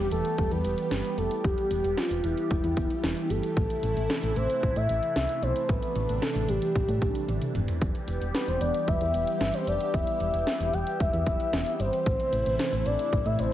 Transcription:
Already playing: analog synth pad E3 G3 B3 G4
0.11 fm bass E1, soft synth lead A4, closed hi-hat
0.25 closed hi-hat
0.38 fm bass E1, kick, closed hi-hat
0.51 fm bass E2, soft synth lead B4, closed hi-hat
0.65 fm bass E1, closed hi-hat
0.78 closed hi-hat
0.91 fm bass G1, soft synth lead B4, snare, closed hi-hat
1.04 closed hi-hat
1.18 fm bass F1, soft synth lead A4, closed hi-hat
1.31 closed hi-hat
1.44 fm bass E1, soft synth lead G4, kick, closed hi-hat
1.58 closed hi-hat
1.71 fm bass E1, closed hi-hat
1.84 fm bass E1, closed hi-hat
1.97 soft synth lead F4, snare, closed hi-hat
2.11 fm bass E1, closed hi-hat
2.24 fm bass E1, soft synth lead E4, closed hi-hat
2.37 closed hi-hat
2.51 fm bass E1, kick, closed hi-hat
2.64 fm bass E2, closed hi-hat
2.77 fm bass E1, kick, closed hi-hat
2.90 closed hi-hat
3.04 fm bass E1, snare, closed hi-hat
3.17 closed hi-hat
3.30 fm bass G1, soft synth lead A4, closed hi-hat
3.43 closed hi-hat
3.57 fm bass A1, analog synth pad C3 A3 E4, kick, closed hi-hat
3.70 closed hi-hat
3.83 fm bass A1, closed hi-hat
3.97 fm bass A1, closed hi-hat
4.10 snare, closed hi-hat
4.23 fm bass A1, closed hi-hat
4.36 fm bass A1, soft synth lead C5, closed hi-hat
4.50 closed hi-hat
4.63 fm bass A1, kick, closed hi-hat
4.76 fm bass A2, soft synth lead E5, closed hi-hat
4.89 fm bass A1, closed hi-hat
5.03 closed hi-hat
5.16 fm bass C2, soft synth lead E5, snare, closed hi-hat
5.29 closed hi-hat
5.43 fm bass B1, soft synth lead C5, closed hi-hat
5.56 closed hi-hat
5.69 fm bass A1, analog synth pad D4, soft synth lead B4, kick, closed hi-hat
5.82 closed hi-hat
5.95 fm bass A1, closed hi-hat
6.09 fm bass A1, closed hi-hat
6.22 soft synth lead A4, snare, closed hi-hat
6.36 fm bass A1, closed hi-hat
6.49 fm bass A1, soft synth lead G4, closed hi-hat
6.62 closed hi-hat
6.75 fm bass A1, kick, closed hi-hat
6.89 fm bass A2, closed hi-hat
7.02 fm bass A1, kick, closed hi-hat
7.15 closed hi-hat
7.28 fm bass A1, closed hi-hat, high tom
7.42 closed hi-hat, mid tom
7.55 fm bass F1, closed hi-hat, mid tom
7.68 closed hi-hat, floor tom
7.82 fm bass E1, analog synth pad G3 B3 G4, kick, closed hi-hat
7.95 closed hi-hat
8.08 fm bass E1, closed hi-hat
8.21 fm bass E1, closed hi-hat
8.35 soft synth lead B4, snare, closed hi-hat
8.48 fm bass E1, soft synth lead C5, closed hi-hat
8.61 fm bass E1, soft synth lead D5, closed hi-hat
8.74 closed hi-hat
8.88 fm bass E1, soft synth lead E5, kick, closed hi-hat
9.01 fm bass E2, closed hi-hat
9.14 fm bass E1, closed hi-hat
9.27 closed hi-hat
9.41 fm bass G1, soft synth lead E5, snare, closed hi-hat
9.54 soft synth lead C5, closed hi-hat
9.67 fm bass F1, soft synth lead D5, closed hi-hat
9.81 closed hi-hat
9.94 fm bass E1, soft synth lead E5, kick, closed hi-hat
10.07 closed hi-hat
10.20 fm bass E1, soft synth lead E5, closed hi-hat
10.34 fm bass E1, closed hi-hat
10.47 snare, closed hi-hat
10.60 fm bass E1, closed hi-hat
10.73 fm bass E1, soft synth lead G5, closed hi-hat
10.87 closed hi-hat
11.00 fm bass E1, soft synth lead E5, kick, closed hi-hat
11.13 fm bass E2, closed hi-hat
11.26 fm bass E1, kick, closed hi-hat
11.40 closed hi-hat
11.53 fm bass E1, snare, closed hi-hat
11.66 closed hi-hat
11.80 fm bass G1, soft synth lead C5, closed hi-hat
11.93 closed hi-hat
12.06 fm bass A1, analog synth pad C3 E3 A3 E4, kick, closed hi-hat
12.20 closed hi-hat
12.33 fm bass A1, closed hi-hat
12.46 fm bass A1, closed hi-hat
12.59 snare, closed hi-hat
12.73 fm bass A1, closed hi-hat
12.86 fm bass A1, soft synth lead D5, closed hi-hat
12.99 closed hi-hat
13.13 fm bass A1, kick, closed hi-hat
13.26 fm bass A2, soft synth lead E5, closed hi-hat
13.39 fm bass A1, soft synth lead C5, closed hi-hat

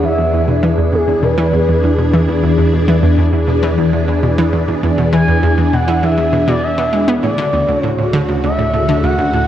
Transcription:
Already playing: sub bass E2, string machine E3 D4 G#4
0.03 synth arpeggio sound E2, analog synth lead E5
0.18 synth arpeggio sound E2
0.33 synth arpeggio sound E2
0.48 synth arpeggio sound B2
0.63 synth arpeggio sound E3
0.78 synth arpeggio sound E2
0.93 synth arpeggio sound E2, analog synth lead G#4
1.08 synth arpeggio sound E2
1.23 synth arpeggio sound B2, analog synth lead B4
1.38 synth arpeggio sound E3
1.53 synth arpeggio sound E2
1.68 synth arpeggio sound E2
1.83 synth arpeggio sound E2
1.98 synth arpeggio sound B2
2.13 synth arpeggio sound E3
2.28 synth arpeggio sound E2
2.43 synth arpeggio sound E2
2.58 synth arpeggio sound E2
2.73 synth arpeggio sound B2
2.88 synth arpeggio sound E3
3.03 synth arpeggio sound E2
3.18 synth arpeggio sound E2
3.33 synth arpeggio sound E2
3.48 synth arpeggio sound B2
3.63 synth arpeggio sound E3
3.78 synth arpeggio sound E2
3.93 synth arpeggio sound E2
4.08 synth arpeggio sound E2
4.23 synth arpeggio sound B2
4.38 synth arpeggio sound E3
4.53 synth arpeggio sound E2
4.68 synth arpeggio sound E2
4.83 synth arpeggio sound E2
4.98 synth arpeggio sound B2
5.13 synth arpeggio sound E3, analog synth lead G#5
5.28 synth arpeggio sound E2
5.43 synth arpeggio sound E2
5.58 synth arpeggio sound E2
5.73 synth arpeggio sound B2, analog synth lead F#5
5.88 synth arpeggio sound E3
6.03 synth arpeggio sound E2, analog synth lead E5
6.18 synth arpeggio sound E2
6.33 synth arpeggio sound B2
6.48 synth arpeggio sound B2, analog synth lead D5
6.63 analog synth lead E5
6.78 synth arpeggio sound B2
6.93 synth arpeggio sound G#3
7.08 synth arpeggio sound B3
7.23 sub bass D2, synth arpeggio sound A2, string machine C#3 D3 F#4, analog synth lead D5
7.38 synth arpeggio sound D3
7.53 synth arpeggio sound D2
7.68 synth arpeggio sound D2
7.81 synth arpeggio sound A2, analog synth lead C#5
7.98 synth arpeggio sound A2
8.13 synth arpeggio sound D3
8.28 synth arpeggio sound D2
8.43 synth arpeggio sound D2, analog synth lead E5
8.58 synth arpeggio sound A2
8.73 synth arpeggio sound A2
8.88 synth arpeggio sound D3
9.03 synth arpeggio sound D2, analog synth lead F#5
9.18 synth arpeggio sound D2
9.33 synth arpeggio sound A2

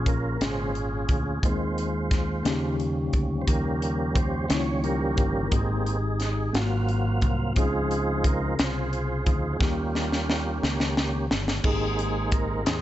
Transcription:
Already playing: fingered electric bass A#1, tine electric piano A#2 A#3 C#4 F4 G#4, tonewheel organ C#4 F4
0.06 tonewheel organ A#4, kick, closed hi-hat
0.41 fingered electric bass G#1, tonewheel organ C#3 G#3 C#4 F4 G#4 C5, snare, closed hi-hat
0.75 closed hi-hat
1.09 fingered electric bass D2, kick, closed hi-hat
1.42 fingered electric bass D#2, tine electric piano D#3 G#3 A#3 D#4 G#4, tonewheel organ D#3 G#3 C4 F4 C5, kick, closed hi-hat
1.49 tine electric piano C4
1.78 closed hi-hat
2.11 kick, snare, closed hi-hat
2.43 fingered electric bass D#2, tine electric piano C#3 A#3 C#4 D#4 G4, tonewheel organ F3 G3 C#4, snare, closed hi-hat
2.80 closed hi-hat
3.13 fingered electric bass D2, kick, closed hi-hat
3.42 tonewheel organ C5
3.48 fingered electric bass D#2, tonewheel organ C#4 G4 A#4, kick, closed hi-hat
3.82 closed hi-hat
4.15 tonewheel organ C5, kick, closed hi-hat
4.48 fingered electric bass C#2, tine electric piano D#3 A#3 C#4 D#4 E4, tonewheel organ F3 G3 C#4 C#5, snare, closed hi-hat
4.57 tine electric piano F4
4.84 tonewheel organ C#4 G4 A#4, closed hi-hat
5.17 fingered electric bass G1, kick, closed hi-hat
5.51 fingered electric bass G#1, tine electric piano G#2 G#3 C4 D#4 F#4, tonewheel organ A#3 C4 D#4 G4 G#4, kick, closed hi-hat
5.60 tine electric piano G4
5.86 closed hi-hat
6.20 snare, closed hi-hat
6.53 fingered electric bass G#1, tine electric piano G#2 A#3 C4 F4 F#4, tonewheel organ F#3 A#3 C4 F#4 F5, snare, closed hi-hat
6.88 closed hi-hat
7.21 fingered electric bass C2, kick, closed hi-hat
7.55 fingered electric bass C#2, tine electric piano C#3 C4 C#4 F4 G#4, tonewheel organ F3 G#3 D#4 F4 G#4 C5, kick, closed hi-hat
7.91 closed hi-hat
8.24 tonewheel organ A#4, kick, closed hi-hat
8.59 fingered electric bass C2, tonewheel organ F4 G#4 C5, snare, closed hi-hat
8.93 closed hi-hat
9.26 fingered electric bass D2, tonewheel organ F3 D#4 C5, kick, closed hi-hat
9.53 tonewheel organ G#4
9.59 fingered electric bass D#2, tine electric piano D#3 A#3 C#4 D#4 G4, tonewheel organ G3 A#3 C#4 F4 G4, kick, snare
9.95 snare
10.12 snare
10.30 snare
10.63 fingered electric bass C#2, snare
10.80 snare
10.97 snare
11.31 fingered electric bass G1, snare
11.48 snare
11.63 fingered electric bass G#1, tine electric piano G#2 C4 D#4 G4 G#4, tonewheel organ G#3 A#3 C4 D#4 G#4, kick, crash
11.99 closed hi-hat
12.32 tonewheel organ A#4, kick, closed hi-hat
12.66 fingered electric bass D#2, tonewheel organ C4 D#4 G#4, snare, clap, closed hi-hat

